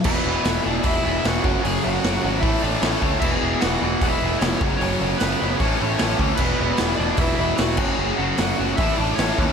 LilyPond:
<<
  \new Staff \with { instrumentName = "Lead electric guitar" } { \time 4/4 \key e \mixolydian \tempo 4 = 151 <b b'>4. <d' d''>8 <e' e''>8 <e' e''>8 <fis' fis''>4 | <gis' gis''>8 <fis' fis''>4. <e' e''>8 <d' d''>8 <cis' cis''>8. r16 | <e' e''>16 <gis' gis''>8. <fis' fis''>16 <fis' fis''>8. <fis' fis''>16 <e' e''>8. <cis' cis''>4 | <cis' cis''>4 <b b'>8 <b b'>8 <cis' cis''>4 <cis' cis''>8. r16 |
<b b'>4. <d' d''>8 <e' e''>8 <e' e''>8 <fis' fis''>4 | <gis' gis''>8 <fis' fis''>4. <e' e''>8 <d' d''>8 <cis' cis''>8. r16 | }
  \new Staff \with { instrumentName = "Overdriven electric guitar" } { \clef bass \time 4/4 \key e \mixolydian <e, b, e>8 <e, b, e>8 <e, b, e>8 <e, b, e>8 <e, b, e>8 <e, b, e>8 <e, b, e>8 <fis, cis fis>8 | <fis, cis fis>8 <fis, cis fis>8 <fis, cis fis>8 <fis, cis fis>8 <a, e a>8 <a, e a>8 <a, e a>8 <a, e a>8 | <e, b, e>8 <e, b, e>8 <e, b, e>8 <e, b, e>8 <e, b, e>8 <e, b, e>8 <e, b, e>8 <fis, cis fis>8 | <fis, cis fis>8 <fis, cis fis>8 <fis, cis fis>8 <fis, cis fis>8 <a, e a>8 <a, e a>8 <a, e a>8 <a, e a>8 |
<e, b, e>8 <e, b, e>8 <e, b, e>8 <e, b, e>8 <e, b, e>8 <e, b, e>8 <e, b, e>8 <fis, cis fis>8 | <fis, cis fis>8 <fis, cis fis>8 <fis, cis fis>8 <fis, cis fis>8 <a, e a>8 <a, e a>8 <a, e a>8 <a, e a>8 | }
  \new Staff \with { instrumentName = "Picked electric bass" } { \clef bass \time 4/4 \key e \mixolydian e,,8 e,,8 e,,8 e,,8 e,,8 e,,8 e,,8 fis,,8 | fis,,8 fis,,8 fis,,8 gis,,8 a,,8 a,,8 a,,8 d,8 | e,,8 e,,8 e,,8 e,,8 e,,8 e,,8 f,,8 fis,,8 | fis,,8 fis,,8 fis,,8 fis,,8 a,,8 a,,8 a,,8 d,8 |
e,,8 e,,8 e,,8 e,,8 e,,8 e,,8 e,,8 fis,,8 | fis,,8 fis,,8 fis,,8 fis,,8 a,,8 a,,8 a,,8 dis,8 | }
  \new DrumStaff \with { instrumentName = "Drums" } \drummode { \time 4/4 <cymc bd>4 <hho sn>4 <hho bd>4 <hho sn>8 bd8 | hho4 <hho sn>4 <hho bd>4 <hho sn>8 bd8 | <cymc bd>4 <hho sn>4 <hho bd>4 <hho sn>8 bd8 | hho4 <hho sn>4 <hho bd>4 <hho sn>8 bd8 |
<cymc bd>4 <hho sn>4 <hho bd>4 <hho sn>8 <cymc bd>8 | r4 <hho sn>4 <hho bd>4 <hho sn>8 bd8 | }
>>